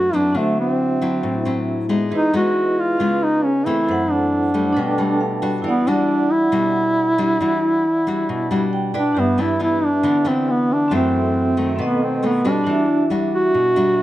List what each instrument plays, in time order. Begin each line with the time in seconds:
Already playing: nylon-string guitar F#2 A3 D4, vibraphone D4 A4 B4 F#5, duduk F#4
0.13 nylon-string guitar F#3 C4 E4, duduk D4
0.32 nylon-string guitar D3, vibraphone D4 F#4
0.37 duduk A3, vibraphone C5 E5
0.60 duduk C4
1.02 nylon-string guitar F#3 C4 E4
1.23 nylon-string guitar A2
1.45 nylon-string guitar F#3 C4 E4
1.89 nylon-string guitar G#3 B3 D#4
2.09 nylon-string guitar E3, vibraphone G#4 B4 D#5
2.14 duduk D#4, vibraphone E4
2.33 nylon-string guitar G#3 B3 D#4, duduk F#4
2.79 duduk F4
2.97 nylon-string guitar C#3 G#3 B3 F4, vibraphone C#4 G#4 B4
3.03 vibraphone F5
3.24 duduk D#4
3.44 duduk C#4
3.66 nylon-string guitar E3 A3 C4, duduk E4
3.85 nylon-string guitar F#2, vibraphone E4 A4 C5
3.91 vibraphone F#5
4.11 duduk D4
4.54 nylon-string guitar G3 A3
4.72 vibraphone D4 A4 B4
4.77 nylon-string guitar B2, vibraphone G5
4.98 nylon-string guitar G3 A3, vibraphone A5
5.20 vibraphone F5
5.42 nylon-string guitar G3 D4 F#4
5.62 nylon-string guitar E3, duduk B3, vibraphone E4
5.66 vibraphone D5 F#5
5.87 nylon-string guitar G3 D4 F#4, duduk D4
6.31 duduk E4
6.52 nylon-string guitar B2 G3 D4 F#4
7.18 nylon-string guitar G3 D4 F#4
7.40 nylon-string guitar E3 G3 D4 F#4
8.07 nylon-string guitar G3 D4 F#4
8.29 nylon-string guitar B2
8.51 nylon-string guitar G3 D4 F#4
8.73 vibraphone G5
8.94 nylon-string guitar D4 E4 B4, duduk D4, vibraphone D5
9.12 vibraphone D4 G4
9.16 nylon-string guitar G2, duduk B3, vibraphone B4 E5
9.38 nylon-string guitar E3 B3 D4, duduk E4
9.59 nylon-string guitar E3 B3 D4, duduk E4
9.85 duduk D4
10.03 nylon-string guitar D3 E3 B3 D4
10.25 nylon-string guitar E3 B3 D4, duduk C4
10.50 duduk B3
10.73 duduk D4
10.88 nylon-string guitar F#2 E3 A3 C4, vibraphone C4 F#4 A4
10.94 duduk C4, vibraphone E5
11.57 nylon-string guitar D#3 A3
11.76 nylon-string guitar B2, vibraphone C4 A4 B4
11.82 duduk B3, vibraphone D#5
12.03 duduk C4
12.23 nylon-string guitar D#3 A3 C4, duduk B3
12.45 nylon-string guitar G3 D4 F#4, duduk D4
12.64 nylon-string guitar E3, vibraphone D4 F#4
12.70 vibraphone E5
13.10 nylon-string guitar G3 D4 F#4
13.35 duduk F#4
13.54 nylon-string guitar B2
13.75 nylon-string guitar G3 D4 F#4, vibraphone D4 F#4 E5